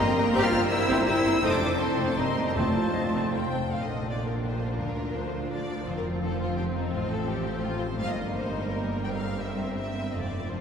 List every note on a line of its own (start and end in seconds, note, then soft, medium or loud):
0.00 0.35 G2 medium
0.00 0.43 G3 medium
0.00 0.26 A#3 medium
0.00 0.33 A#3 medium
0.00 0.34 A#3 medium
0.00 0.16 G4 medium
0.00 1.38 A#4 medium
0.00 0.30 D#5 medium
0.00 0.88 G5 medium
0.00 0.35 A#5 medium
0.00 0.98 A#5 medium
0.08 0.71 A#4 medium
0.16 0.25 G1 medium
0.16 0.24 G3 medium
0.16 0.24 A#3 medium
0.16 0.24 D#4 medium
0.16 0.62 G4 medium
0.16 0.25 D#5 medium
0.16 0.24 A#5 medium
0.27 1.44 A#3 medium
0.34 0.42 G1 medium
0.34 1.44 G2 medium
0.34 0.42 G3 medium
0.34 0.51 C4 medium
0.34 0.43 G4 loud
0.34 0.44 G4 loud
0.34 0.43 C5 medium
0.34 2.17 C5 medium
0.34 0.41 A#5 medium
0.34 0.43 G6 loud
0.41 1.44 G3 medium
0.41 0.70 F4 medium
0.41 0.56 F4 medium
0.41 0.69 F6 loud
0.52 0.60 G1 medium
0.52 0.61 G3 medium
0.52 0.59 C4 medium
0.52 1.61 C4 medium
0.52 0.59 G4 medium
0.52 0.62 C5 medium
0.52 0.60 A#5 medium
0.63 1.33 G4 medium
0.68 0.78 G3 medium
0.68 1.06 E4 medium
0.68 1.05 E4 medium
0.68 1.24 A#4 medium
0.68 0.79 C5 medium
0.68 1.04 E6 medium
0.73 0.79 A#5 medium
0.80 1.15 C5 medium
0.88 0.96 G1 medium
0.88 0.97 G3 medium
0.88 1.05 C4 medium
0.88 0.97 C5 medium
0.88 1.06 G5 medium
0.88 0.97 A#5 medium
0.99 1.44 A#5 medium
1.06 1.14 G1 medium
1.06 1.15 G3 medium
1.06 1.13 C4 medium
1.06 1.41 E4 medium
1.06 1.42 E4 medium
1.06 1.13 G4 medium
1.06 1.15 C5 medium
1.06 1.44 G5 medium
1.06 1.41 E6 loud
1.10 1.16 A#5 medium
1.16 1.79 C5 medium
1.23 1.32 G1 medium
1.23 1.32 G3 medium
1.23 1.32 C4 medium
1.23 1.32 E4 medium
1.23 1.44 A#4 medium
1.23 1.32 C5 medium
1.23 1.33 A#5 medium
1.34 1.44 G4 medium
1.42 1.49 F1 medium
1.42 2.19 F2 medium
1.42 1.76 F3 medium
1.42 1.59 A3 medium
1.42 1.59 C4 medium
1.42 1.51 D#4 medium
1.42 2.15 A4 medium
1.42 1.77 C5 medium
1.42 1.78 A5 medium
1.42 1.52 D#6 loud
1.51 2.19 C3 soft
1.51 1.79 D4 medium
1.51 1.80 D4 medium
1.51 1.79 D6 medium
1.60 1.67 F1 medium
1.60 1.67 C4 medium
1.60 2.19 C4 soft
1.60 1.67 F4 medium
1.72 1.88 A4 medium
1.79 2.18 F3 medium
1.79 2.07 C4 medium
1.79 2.19 C5 medium
1.79 2.19 A5 medium
1.79 2.07 C6 medium
1.89 2.18 A4 medium
1.97 2.05 F1 medium
1.97 2.15 A3 medium
1.97 2.16 C4 medium
2.07 2.17 D4 medium
2.07 2.19 C6 medium
2.07 2.18 D6 medium
2.16 2.24 G1 soft
2.16 2.57 G2 medium
2.16 2.55 G3 medium
2.16 2.25 A#3 medium
2.16 2.46 C4 medium
2.16 2.24 D#4 medium
2.16 2.56 A#4 medium
2.16 2.54 D#5 medium
2.16 2.56 D#5 medium
2.16 2.58 A#5 medium
2.16 2.46 C6 medium
2.27 2.58 G3 soft
2.36 2.45 G1 soft
2.36 2.44 A#3 medium
2.36 2.58 A#3 soft
2.46 2.56 A#3 medium
2.46 2.58 A#4 soft
2.46 2.56 A#5 medium
2.55 2.64 F1 medium
2.55 3.11 F2 medium
2.55 3.75 F2 medium
2.55 3.51 F3 medium
2.55 2.74 A3 medium
2.55 3.51 A3 medium
2.55 3.54 A3 medium
2.55 2.74 C4 medium
2.55 3.53 F4 soft
2.55 2.90 C5 soft
2.55 3.52 C5 soft
2.55 3.32 A5 medium
2.55 3.54 C6 medium
2.66 3.74 C3 soft
2.75 2.84 F1 soft
2.75 2.83 C4 soft
2.75 2.83 F4 soft
2.86 3.62 F4 soft
2.93 3.06 D#5 medium
2.93 3.14 F5 soft
3.05 3.32 D5 medium
3.14 3.23 F1 medium
3.14 3.32 A3 medium
3.14 3.32 C4 medium
3.14 3.33 F5 soft
3.24 6.95 F6 soft
3.33 3.42 F1 soft
3.33 3.41 C4 soft
3.33 3.41 F4 soft
3.33 3.71 C5 medium
3.33 3.52 F5 soft
3.33 3.69 G5 medium
3.44 3.74 C5 soft
3.53 3.61 F1 soft
3.53 3.61 C4 soft
3.53 4.25 F5 soft
3.63 4.08 F4 soft
3.72 4.77 A#1 soft
3.72 4.82 A#2 soft
3.72 4.77 A#2 soft
3.72 4.77 D3 soft
3.72 5.83 D4 medium
3.72 5.84 F4 soft
3.72 5.84 A#4 soft
3.72 3.81 F5 medium
3.82 4.09 D#5 medium
3.91 4.97 A#3 soft
4.09 5.15 F4 soft
4.09 4.27 D5 medium
4.26 4.34 A#4 medium
4.26 4.62 F5 soft
4.45 5.49 A#4 soft
4.45 4.80 C5 medium
4.63 5.32 F5 soft
4.79 5.87 D2 soft
4.79 5.87 D2 medium
4.79 5.89 D3 soft
4.79 6.90 F3 medium
4.79 5.14 A#4 medium
4.98 5.89 A#3 soft
5.14 6.04 F4 soft
5.14 5.51 C5 medium
5.33 5.68 F5 soft
5.50 5.88 A#4 soft
5.50 5.86 D5 medium
5.69 6.56 F5 soft
5.87 6.94 F1 medium
5.87 6.94 F2 medium
5.87 8.01 F3 medium
5.87 7.96 C4 medium
5.87 6.90 F4 soft
5.87 5.96 C5 medium
5.96 6.04 A#4 medium
6.05 6.38 F4 soft
6.22 6.40 A4 medium
6.22 6.74 C5 soft
6.39 7.27 F4 soft
6.39 6.57 F4 medium
6.56 6.64 G4 medium
6.56 8.00 F5 soft
6.75 6.93 D#4 medium
6.75 7.44 C5 soft
6.93 7.98 A1 medium
6.93 7.97 A2 medium
6.93 8.01 A2 medium
6.93 7.95 F3 medium
6.93 7.96 C4 medium
6.93 7.11 F4 medium
7.10 8.01 C4 soft
7.10 7.28 A4 medium
7.27 7.62 F4 soft
7.27 7.63 G4 medium
7.45 7.79 C5 soft
7.61 7.80 F4 medium
7.61 8.00 F4 soft
7.79 7.98 C5 medium
7.79 8.00 C5 soft
7.98 10.14 G1 medium
7.98 9.04 G2 medium
7.98 10.14 G2 medium
7.98 10.10 G3 medium
7.98 9.02 A#3 medium
7.98 9.02 D#4 medium
7.98 10.10 A#4 medium
7.98 8.07 F5 medium
8.07 8.34 D#5 medium
8.16 10.15 A#3 soft
8.33 8.67 A#4 soft
8.33 8.69 C5 medium
8.51 8.85 D#5 soft
8.69 9.05 A#4 medium
8.69 9.40 A#4 soft
8.86 9.07 D#5 soft
9.03 10.15 G2 soft
9.03 10.46 C4 medium
9.03 10.46 C4 soft
9.03 9.07 G5 medium
9.12 9.40 F5 medium
9.23 10.51 C4 soft
9.40 9.76 A#4 soft
9.40 9.75 E5 medium
9.59 9.94 C5 soft
9.76 10.15 A#4 soft
9.76 10.12 E5 medium
9.95 10.31 C5 soft
10.11 10.61 F1 soft
10.11 10.48 F2 soft
10.11 10.61 F2 soft
10.11 10.47 A3 soft
10.11 10.61 F4 soft
10.11 10.21 D#5 medium
10.20 10.48 D5 medium
10.31 10.51 A4 soft
10.31 10.52 C5 soft
10.48 10.61 F2 soft
10.48 10.61 F3 soft
10.48 10.61 A#3 soft
10.48 10.61 D4 soft
10.48 10.61 C5 soft